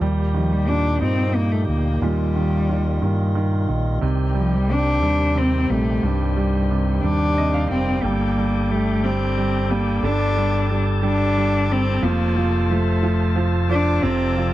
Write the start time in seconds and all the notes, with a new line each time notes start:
0.01 D#2 A#2 G3 A#3 G4
0.34 D#3 F3
0.52 G3
0.68 A#2 D4
1.01 G2 C4 D#4
1.35 A#3
1.52 A3
1.68 D2 A#3
2.02 D#2 A#2 G3 F4
2.36 D#3
2.69 D#3
3.02 G2 D#3
3.35 D#3
3.69 A#1 D#3
4.01 C2 C3 D#3 C4 G4
4.35 F3 G3
4.54 G3
4.69 C3 D4
5.02 D#2 G3
5.35 C3 C4
5.70 A#1 G3 A3
6.03 C2 G2 G3
6.37 G3
6.71 C3
7.03 D#2 G3 D4
7.37 C3 D#5
7.54 F5
7.69 F1 G3 C4 G5
8.01 G1 G3 A#3 D4 G4 A4 G5
8.38 G3
8.71 G3 A3
9.04 G3 C4
9.37 G3
9.70 G3 A#3
10.03 G1 D3 D4 A5
10.37 G3
10.70 G3
11.03 G3 D4
11.37 G3
11.69 G3 C4
12.03 F1 F3 A#3 F4 C5
12.36 F3
12.70 F3 A3
13.03 F3
13.36 F3
13.69 F3 D4
14.03 F1 C3 C4 D5
14.37 F3